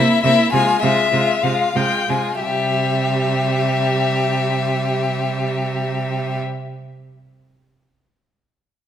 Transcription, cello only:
0.24 C3
0.53 C3
0.83 C3
1.13 C3
1.44 C3
1.76 C3
2.10 C3
2.43 C3

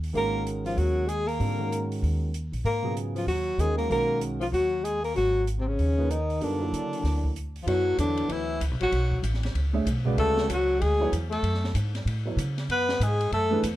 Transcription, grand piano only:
0.13 D#3 G#3 C#4 F#4 A#4
1.39 D3 G3 C4 F4 A4
1.59 D#3 G#3 C#4 F#4 A#4
2.83 C#3 F#3 B3 F4 G#4
3.58 D#3 G#3 C#4 F#4 A#4
3.90 D#3 G#3 C#4 F#4 A#4
5.97 F3 A#3 D#4 G#4 B4
6.41 G3 B3 D#4 F4 A#4
6.60 F#3 A#3 E4 A4 D5
7.67 F#3 B3 E4 A4 C#5
9.73 A3 D4 G#4 C#5 E5
10.05 C#3 G#3 F#4 B4 D5
11.00 F#3 B3 E4 A4 C#5
12.25 F#3 B3 E4 A4 C#5
13.50 E3 A3 D4 G#4 B4

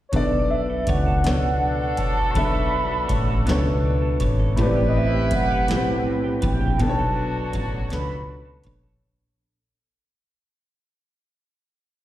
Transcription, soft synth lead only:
0.09 C#5
0.15 D5
0.51 E5
0.89 F#5
1.98 A5
2.31 B5 C#6
4.60 D5
4.89 D#5
4.98 E5
5.35 F#5
6.45 G5
6.81 A5
7.56 A5
7.92 B5

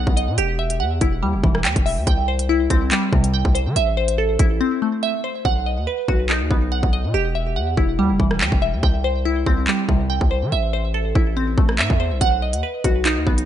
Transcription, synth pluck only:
Already playing: B3 D#4 F#4 B4 D#5 F#5
0.17 D#5
0.38 G4
0.59 E5
0.80 F#5
1.01 E4
1.23 G3
1.44 E3
1.65 G5
1.86 E5
2.07 G5
2.28 C5
2.49 E4
2.70 C4
2.92 G3
3.13 C3
3.34 G5
3.55 C5
3.76 E5
3.97 C5
4.18 A4
4.39 E4
4.61 C4
4.82 A3
5.03 E5
5.24 C5
5.45 F#5
5.66 D#5
5.87 B4
6.09 F#4
6.29 D#4
6.51 B3
6.72 F#5
6.93 D#5
7.14 G4
7.35 E5
7.56 F#5
7.78 E4
7.99 G3
8.20 E3
8.41 G5
8.62 E5
8.83 G5
9.04 C5
9.25 E4
9.46 C4
9.68 G3
9.89 C3
10.10 G5
10.31 C5
10.52 E5
10.73 C5
10.94 A4
11.16 E4
11.37 C4
11.58 A3
11.79 E5
12.00 C5
12.21 F#5
12.42 D#5
12.63 B4
12.85 F#4
13.05 D#4
13.27 B3

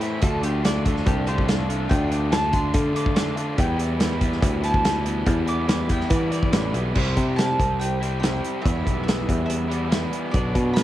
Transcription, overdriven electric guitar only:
0.01 A2 E3 A3 C4 E4
0.21 D3 A3 D4 F4
0.42 D3 A3 D4 F4
0.64 D3 A3 D4 F4
0.85 D3 A3 D4 F4
1.06 D3 A3 D4 F4
1.28 D3 A3 D4 F4
1.48 D3 A3 D4 F4
1.69 D3 A3 D4 F4
1.89 D3 A3 D4 F4
2.11 D3 A3 D4 F4
2.31 D3 A3 D4 F4
2.51 D3 A3 D4 F4
2.73 D3 A3 D4 F4
2.94 D3 A3 D4 F4
3.16 D3 A3 D4 F4
3.35 D3 A3 D4 F4
3.57 E3 G3 B3 E4
3.77 E3 G3 B3 E4
3.99 E3 G3 B3 E4
4.20 E3 G3 B3 E4
4.41 E3 G3 B3 E4
4.62 E3 G3 B3 E4
4.84 E3 G3 B3 E4
5.05 E3 G3 B3 E4
5.27 E3 G3 B3 E4
5.47 E3 G3 B3 E4
5.67 E3 G3 B3 E4
5.89 E3 G3 B3 E4
6.09 E3 G3 B3 E4
6.30 E3 G3 B3 E4
6.51 E3 G3 B3 E4
6.73 E3 G3 B3 E4
6.94 C3 G3 C4 E4
8.00 C3 G3 C4 E4
8.21 C3 G3 C4 E4
8.63 E3 G3 B3 E4
9.68 E3 G3 B3 E4
9.88 E3 G3 B3 E4
10.33 B2 F#3 B3 D4

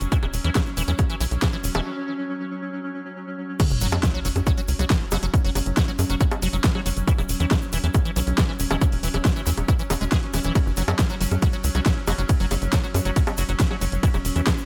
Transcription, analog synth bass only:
0.01 F#1
0.23 E1
0.34 E1
0.44 E2
0.77 E1
0.88 E2
1.21 B1
1.31 B1
1.64 E1
1.75 E1
3.71 F#1
3.81 F#1
3.92 F#2
4.25 F#1
4.36 F#2
4.68 C#2
4.79 C#2
5.12 F#1
5.23 F#1
5.44 F#1
5.55 F#1
5.66 F#1
5.99 F#2
6.10 F#1
6.42 F#1
6.53 F#1
6.86 F#1
6.97 F#1
7.18 E1
7.29 E1
7.40 E2
7.73 E1
7.84 E2
8.16 B1
8.27 B1
8.60 E1
8.71 E1
8.92 E1
9.03 E1
9.14 E1
9.47 E2
9.58 E1
9.90 E1
10.01 E1
10.34 E1
10.44 E1
10.66 F#1
10.77 F#1
10.88 F#2
11.21 F#1
11.31 F#2
11.64 C#2
11.75 C#2
12.07 F#1
12.18 F#1
12.40 F#1
12.51 F#1
12.62 F#1
12.94 F#2
13.05 F#1
13.38 F#1
13.49 F#1
13.81 F#1
13.92 F#1
14.14 E1
14.25 E1
14.36 E2

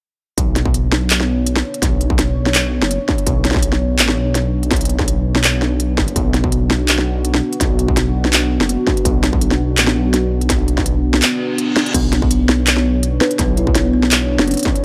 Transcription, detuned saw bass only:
0.38 B1
1.82 B1
2.82 F#1
3.27 B1
3.99 A1
4.17 B1
4.71 B1
5.98 F#1
6.16 B1
7.61 B1
8.60 F#1
9.05 B1
9.77 A1
9.96 B1
10.50 B1
11.94 B1
13.39 B1
14.39 F#1

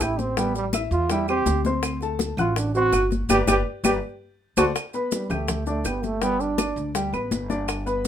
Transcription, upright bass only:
0.00 A1
0.91 E2
1.46 D2
2.37 A1
2.92 G1
3.29 G1
3.47 G1
3.84 G1
4.57 D2
5.30 D2
5.84 G1
6.76 D2
7.12 A1
7.31 G1

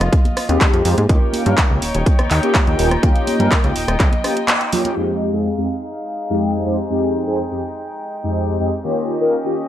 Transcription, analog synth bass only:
0.01 F1
0.49 D#2
0.61 F2
0.74 F2
0.85 F2
0.98 G#2
1.09 D#2
1.46 G2
1.71 C#2
1.82 D#1
1.95 D#1
2.19 D#2
2.31 D#2
2.67 D#2
2.79 D#1
3.03 D#2
3.40 G2
3.64 C#2
3.76 D#1
3.88 D#1
4.00 C#2

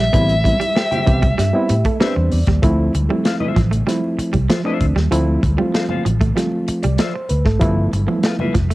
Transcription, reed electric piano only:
0.13 G3 B3 C4 E4
0.44 G3 B3 C4 E4
0.60 C4 E4
0.91 C4 D4
1.06 G3 B3 C4 G4
1.37 C4 D4
1.53 G3 B3 C4 E4
1.69 G4
1.85 C4 E4 A4
2.00 G3 B3 C4 D4 B4
2.16 C5
2.32 D5
2.62 F3 A3 C4 E4
3.09 F3 A3 C4 E4
3.87 F3 A3 C4 E4
4.64 F3 A3 C4 D4
5.11 F3 A3 C4 E4
5.57 F3 A3 C4 F4
6.35 F3 A3 C4 F4
6.83 D5
7.14 C5
7.29 B4
7.45 A4
7.60 F3 A3 B3 E4
8.06 F3 A3 B3 E4

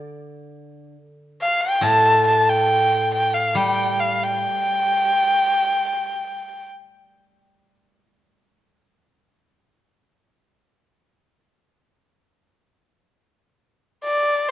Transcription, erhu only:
1.41 F5
1.61 G5
1.83 A5
2.27 A5
2.48 G5
3.14 G5
3.34 F5
3.57 G5
4.00 F5
4.23 G5
14.04 D5

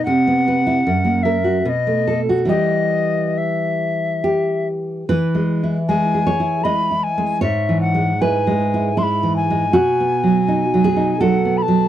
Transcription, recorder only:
0.05 F#5
1.23 E5
1.65 D#5 E5
2.49 D#5
3.37 E5
5.88 G#5
6.63 B5
7.03 G#5
7.43 E5
7.81 F#5
8.21 G#5
8.98 C6
9.02 B5
9.36 G#5
11.21 F#5
11.57 B5
11.62 A5

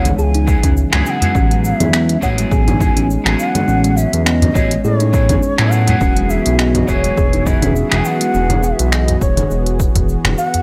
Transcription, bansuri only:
Already playing: F#5
0.18 A5
0.22 G#5
1.06 G#5
1.10 F#5
1.64 E5
2.22 F#5
2.52 G#5
3.39 F#5
3.97 E5
4.26 D#5
4.84 C#5
5.71 F#5
6.30 E5
6.59 D#5
6.67 E5
6.75 D#5
6.89 C#5
7.47 E5
7.99 G#5
8.06 F#5
8.63 E5
8.92 D#5
9.21 C#5
10.38 F#5

